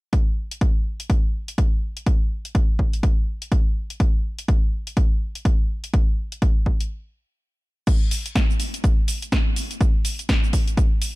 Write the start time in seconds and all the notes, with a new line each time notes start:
0.13 kick, closed hi-hat
0.51 closed hi-hat
0.61 kick, closed hi-hat
1.00 closed hi-hat
1.10 kick, closed hi-hat
1.48 closed hi-hat
1.58 kick, closed hi-hat
1.97 closed hi-hat
2.06 kick, closed hi-hat
2.45 closed hi-hat
2.55 kick, closed hi-hat
2.79 kick
2.93 closed hi-hat
3.03 kick, closed hi-hat
3.42 closed hi-hat
3.52 kick, closed hi-hat
3.90 closed hi-hat
4.00 kick, closed hi-hat
4.39 closed hi-hat
4.48 kick, closed hi-hat
4.87 closed hi-hat
4.97 kick, closed hi-hat
5.35 closed hi-hat
5.45 kick, closed hi-hat
5.84 closed hi-hat
5.94 kick, closed hi-hat
6.32 closed hi-hat
6.42 kick, closed hi-hat
6.66 kick
6.80 closed hi-hat
7.87 kick, closed hi-hat, crash, cabasa
8.11 open hi-hat, cabasa
8.26 closed hi-hat, cabasa
8.36 kick, snare, closed hi-hat, cabasa
8.50 cabasa
8.60 open hi-hat, cabasa
8.74 closed hi-hat, cabasa
8.84 kick, closed hi-hat, cabasa
9.08 open hi-hat, cabasa
9.22 closed hi-hat, cabasa
9.32 kick, snare, closed hi-hat, cabasa
9.56 open hi-hat, cabasa
9.71 closed hi-hat, cabasa
9.81 kick, closed hi-hat, cabasa
10.05 open hi-hat, cabasa
10.19 closed hi-hat, cabasa
10.29 kick, snare, closed hi-hat, cabasa
10.44 cabasa
10.53 kick, open hi-hat, cabasa
10.68 closed hi-hat, cabasa
10.77 kick, closed hi-hat, cabasa
11.02 open hi-hat, cabasa